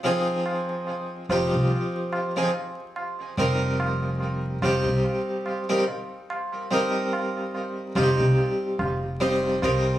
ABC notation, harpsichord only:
X:1
M:4/4
L:1/16
Q:"Swing 16ths" 1/4=72
K:Cphr
V:1 name="Harpsichord"
[F,CEA]6 [F,CEG]4- [F,CEG] [F,CEA] z4 | [G,CEB]6 [G,CEG]4- [G,CEG] [G,CEB] z4 | [G,CEB]6 [G,CEG]4- [G,CEG] z [G,CEc]2 [G,CEB]2 |]